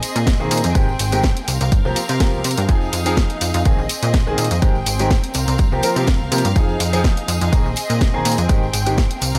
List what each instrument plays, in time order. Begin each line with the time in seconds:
Already playing: string section C4 G#4 D#5
0.03 open hi-hat, tambourine
0.16 analog synth bass A#2, closed hi-hat, tambourine
0.27 kick, snare, closed hi-hat, tambourine
0.39 analog synth bass A#1, grand piano D#3 A#3 C4 G#4, tambourine
0.51 analog synth bass A#2, open hi-hat, tambourine
0.58 closed hi-hat
0.64 analog synth bass F2, closed hi-hat, tambourine
0.75 analog synth bass G#1, grand piano D#3 G#3 C4 G4, string section G5, kick, closed hi-hat, tambourine
0.89 tambourine
0.99 analog synth bass G#1, open hi-hat, tambourine
1.12 grand piano D#3 G#3 C4 G4, closed hi-hat, tambourine
1.24 kick, snare, tambourine
1.36 closed hi-hat, tambourine
1.48 analog synth bass C2, string section C4 A#4 F5, open hi-hat, tambourine
1.61 analog synth bass C2, closed hi-hat, tambourine
1.72 analog synth bass G2, kick, closed hi-hat, tambourine
1.85 analog synth bass C2, grand piano F3 A#3 C4 G4, tambourine
1.96 open hi-hat, tambourine
2.09 analog synth bass C3, closed hi-hat, tambourine
2.20 grand piano F3 A#3 C4 G4, kick, snare, closed hi-hat, tambourine
2.33 analog synth bass C2, tambourine
2.44 analog synth bass C3, open hi-hat, tambourine
2.46 tambourine
2.51 closed hi-hat
2.57 analog synth bass G2, closed hi-hat, tambourine
2.68 analog synth bass F2, grand piano F3 C4 D#4 G#4, string section D#4 G#4 F5, kick, closed hi-hat, tambourine
2.81 tambourine
2.93 analog synth bass F2, open hi-hat, tambourine
3.06 grand piano F3 C4 D#4 G#4, closed hi-hat, tambourine
3.17 kick, snare, tambourine
3.30 closed hi-hat, tambourine
3.41 analog synth bass F2, open hi-hat, tambourine
3.54 analog synth bass F2, closed hi-hat, tambourine
3.65 analog synth bass A#1, grand piano D#3 A#3 C4 G#4, string section C4 G#4 D#5, kick, closed hi-hat, tambourine
3.79 analog synth bass A#1, tambourine
3.89 open hi-hat, tambourine
4.03 analog synth bass A#2, closed hi-hat, tambourine
4.14 kick, snare, closed hi-hat, tambourine
4.16 tambourine
4.27 analog synth bass A#1, grand piano D#3 A#3 C4 G#4, tambourine
4.38 analog synth bass A#2, open hi-hat, tambourine
4.44 closed hi-hat
4.51 analog synth bass F2, closed hi-hat, tambourine
4.62 analog synth bass G#1, grand piano D#3 G#3 C4 G4, string section C4 G#4 G5, kick, closed hi-hat, tambourine
4.75 tambourine
4.86 analog synth bass G#1, open hi-hat, tambourine
4.99 grand piano D#3 G#3 C4 G4, closed hi-hat, tambourine
5.10 kick, snare, tambourine
5.24 closed hi-hat, tambourine
5.34 analog synth bass C2, string section A#4 F5, open hi-hat, tambourine
5.48 analog synth bass C2, closed hi-hat, tambourine
5.58 analog synth bass G2, kick, closed hi-hat, tambourine
5.72 analog synth bass C2, grand piano F3 A#3 C4 G4, tambourine
5.83 grand piano F3 A#3 C4 A#4, open hi-hat, tambourine
5.96 analog synth bass C3, grand piano F3 A#3 C4 G4, closed hi-hat, tambourine
6.07 kick, snare, closed hi-hat, tambourine
6.20 analog synth bass C2, tambourine
6.31 analog synth bass C3, grand piano F3 A#3 C4 G4, open hi-hat, tambourine
6.38 closed hi-hat
6.44 analog synth bass G2, closed hi-hat, tambourine
6.55 analog synth bass F2, grand piano F3 C4 D#4 G#4, string section D#4 G#4, kick, closed hi-hat, tambourine
6.69 tambourine
6.80 analog synth bass F2, open hi-hat, tambourine
6.92 grand piano F3 C4 D#4 G#4, closed hi-hat, tambourine
7.04 kick, snare, tambourine
7.17 closed hi-hat, tambourine
7.28 analog synth bass F2, open hi-hat, tambourine
7.41 analog synth bass F2, closed hi-hat, tambourine
7.52 analog synth bass A#1, grand piano D#3 A#3 C4 G#4, string section C4 D#5, kick, closed hi-hat, tambourine
7.66 analog synth bass A#1, tambourine
7.76 open hi-hat, tambourine
7.90 analog synth bass A#2, closed hi-hat, tambourine
8.01 kick, snare, closed hi-hat, tambourine
8.13 analog synth bass A#1, grand piano D#3 A#3 C4 G#4, tambourine
8.25 analog synth bass A#2, open hi-hat, tambourine
8.32 closed hi-hat
8.38 analog synth bass F2, closed hi-hat, tambourine
8.49 analog synth bass G#1, grand piano D#3 G#3 C4 G4, string section G5, kick, closed hi-hat, tambourine
8.63 tambourine
8.73 analog synth bass G#1, open hi-hat, tambourine
8.86 grand piano D#3 G#3 C4 G4, closed hi-hat, tambourine
8.97 kick, snare, tambourine
9.11 closed hi-hat, tambourine
9.21 analog synth bass C2, string section C4 A#4 F5, open hi-hat, tambourine
9.35 analog synth bass C2, closed hi-hat, tambourine